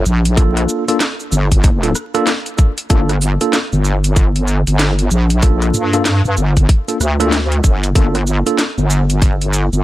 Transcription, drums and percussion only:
0.06 shaker medium
0.25 closed hi-hat medium
0.25 shaker soft
0.37 kick loud
0.37 closed hi-hat medium
0.37 shaker soft
0.57 cross-stick medium
0.57 closed hi-hat soft
0.57 shaker soft
0.69 shaker medium
0.88 closed hi-hat medium
0.88 shaker soft
1.01 snare loud
1.01 closed hi-hat medium
1.01 shaker soft
1.20 shaker soft
1.32 shaker medium
1.52 kick medium
1.52 closed hi-hat medium
1.52 shaker soft
1.64 kick loud
1.64 closed hi-hat medium
1.64 shaker soft
1.83 closed hi-hat soft
1.83 shaker soft
1.95 cross-stick medium
1.95 shaker medium
2.15 cross-stick medium
2.15 closed hi-hat medium
2.15 shaker soft
2.27 snare loud
2.27 closed hi-hat medium
2.27 shaker soft
2.46 closed hi-hat soft
2.46 shaker soft
2.58 kick loud
2.58 shaker medium
2.78 closed hi-hat medium
2.78 shaker soft
2.90 kick loud
2.90 closed hi-hat medium
2.90 shaker soft
3.09 cross-stick medium
3.09 closed hi-hat soft
3.09 shaker soft
3.22 shaker medium
3.41 closed hi-hat medium
3.41 shaker soft
3.53 snare loud
3.53 closed hi-hat medium
3.53 shaker soft
3.73 shaker soft
3.85 shaker medium
4.04 closed hi-hat medium
4.04 shaker soft
4.16 kick loud
4.16 closed hi-hat medium
4.16 shaker soft
4.36 closed hi-hat soft
4.36 shaker soft
4.48 shaker medium
4.67 closed hi-hat medium
4.67 shaker soft
4.79 snare loud
4.79 closed hi-hat medium
4.79 shaker soft
4.99 closed hi-hat soft
4.99 shaker soft
5.11 shaker medium
5.30 closed hi-hat medium
5.30 shaker soft
5.42 kick loud
5.42 closed hi-hat medium
5.42 shaker soft
5.62 cross-stick medium
5.62 closed hi-hat soft
5.62 shaker soft
5.74 shaker medium
5.93 closed hi-hat medium
5.93 shaker soft
6.05 snare loud
6.05 closed hi-hat medium
6.05 shaker soft
6.25 shaker soft
6.37 shaker medium
6.57 kick medium
6.57 closed hi-hat soft
6.57 shaker soft
6.69 kick loud
6.69 closed hi-hat medium
6.88 closed hi-hat soft
6.88 shaker soft
7.01 cross-stick soft
7.01 shaker medium
7.20 cross-stick soft
7.20 closed hi-hat medium
7.20 shaker soft
7.32 snare loud
7.32 closed hi-hat medium
7.32 shaker soft
7.52 closed hi-hat soft
7.52 shaker soft
7.64 kick loud
7.64 shaker medium
7.83 closed hi-hat medium
7.83 shaker soft
7.95 kick loud
7.95 closed hi-hat medium
7.95 shaker soft
8.15 cross-stick medium
8.15 closed hi-hat soft
8.15 shaker soft
8.27 shaker medium
8.47 closed hi-hat medium
8.47 shaker soft
8.59 snare loud
8.59 closed hi-hat medium
8.59 shaker soft
8.78 shaker soft
8.90 shaker medium
9.10 closed hi-hat medium
9.10 shaker soft
9.22 kick loud
9.22 closed hi-hat medium
9.22 shaker soft
9.41 closed hi-hat soft
9.41 shaker soft
9.53 shaker medium
9.73 shaker soft

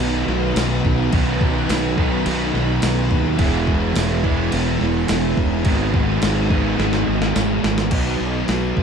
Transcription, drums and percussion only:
0.00 crash medium
0.28 snare soft
0.56 snare loud
0.56 tambourine medium
0.56 crash medium
0.85 kick medium
1.13 kick loud
1.13 crash medium
1.41 kick medium
1.69 snare loud
1.69 tambourine loud
1.69 crash medium
1.98 kick medium
2.26 crash medium
2.55 snare soft
2.82 snare loud
2.82 tambourine loud
2.82 crash medium
3.11 kick medium
3.39 kick loud
3.39 crash medium
3.67 kick medium
3.96 snare loud
3.96 tambourine loud
3.96 crash medium
4.11 snare soft
4.24 kick medium
4.52 crash medium
4.81 snare soft
5.08 snare loud
5.08 tambourine loud
5.08 crash medium
5.37 kick medium
5.65 kick loud
5.65 crash medium
5.94 kick medium
6.22 snare loud
6.22 tambourine loud
6.22 crash medium
6.50 kick medium
6.80 snare medium
6.93 snare medium
7.22 snare medium
7.36 snare medium
7.36 tambourine loud
7.64 snare loud
7.78 snare loud
7.91 kick loud
7.91 open hi-hat medium
7.91 crash loud
8.48 snare loud
8.48 open hi-hat medium
8.77 kick medium

